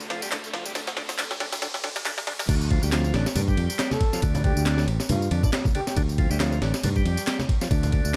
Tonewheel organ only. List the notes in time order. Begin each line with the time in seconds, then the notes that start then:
0.10 F3
0.23 G3
0.32 D3
0.53 F3
0.66 G3
0.75 D3
0.97 D3
1.19 D3
1.40 D3
1.62 D3
1.84 D3
2.06 D3
2.28 D3
2.49 D3
2.71 F3
2.84 G3
2.93 F3
3.15 D3
3.36 D3
3.48 G3
4.13 F3
4.23 D3
4.44 D3
5.31 D3
5.44 D4
5.75 D3
5.97 D3
6.19 F3
6.31 G3
6.40 F3
6.62 D3
6.84 D3
6.96 G3
7.61 F3
7.71 D3
7.93 D3